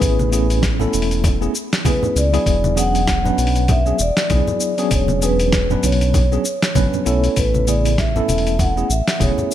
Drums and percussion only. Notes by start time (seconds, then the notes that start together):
0.01 kick, open hi-hat, cabasa
0.19 high conga, cabasa
0.32 open hi-hat, cabasa
0.50 open hi-hat, cabasa
0.63 kick, snare, open hi-hat, cabasa
0.80 low conga, cabasa
0.93 open hi-hat, cabasa
1.02 open hi-hat
1.11 open hi-hat, cabasa
1.24 kick, open hi-hat, low conga, cabasa
1.42 cabasa
1.55 cabasa
1.73 snare, open hi-hat, cabasa
1.85 kick, open hi-hat, high conga, cabasa
2.03 low conga, cabasa
2.16 open hi-hat, cabasa
2.34 open hi-hat, cabasa
2.46 kick, open hi-hat, cabasa
2.64 high conga, cabasa
2.77 open hi-hat, cabasa
2.95 open hi-hat, cabasa
3.07 kick, snare, open hi-hat, cabasa
3.25 low conga, cabasa
3.38 open hi-hat, cabasa
3.47 open hi-hat
3.56 open hi-hat, cabasa
3.68 kick, open hi-hat, low conga, cabasa
3.86 cabasa
3.99 cabasa
4.17 snare, open hi-hat, cabasa
4.30 kick, open hi-hat, high conga, cabasa
4.48 low conga, cabasa
4.60 cabasa
4.78 open hi-hat, cabasa
4.91 kick, open hi-hat, cabasa
5.08 high conga, cabasa
5.22 open hi-hat, cabasa
5.39 open hi-hat, cabasa
5.52 kick, snare, open hi-hat, cabasa
5.70 low conga, cabasa
5.83 open hi-hat, high conga, cabasa
5.92 open hi-hat
6.01 open hi-hat, cabasa
6.14 kick, open hi-hat, low conga, cabasa
6.32 cabasa
6.45 cabasa
6.62 snare, open hi-hat, cabasa
6.75 kick, open hi-hat, high conga, cabasa
6.93 low conga, cabasa
7.06 open hi-hat, cabasa
7.24 open hi-hat, cabasa
7.36 kick, open hi-hat, cabasa
7.54 high conga, cabasa
7.67 open hi-hat, cabasa
7.85 open hi-hat, cabasa
7.98 kick, snare, open hi-hat, cabasa
8.16 low conga, cabasa
8.28 open hi-hat, high conga, cabasa
8.38 open hi-hat
8.47 open hi-hat, cabasa
8.59 kick, open hi-hat, low conga, cabasa
8.77 cabasa
8.90 cabasa
9.08 snare, open hi-hat, cabasa
9.20 kick, open hi-hat, high conga, cabasa
9.38 low conga, cabasa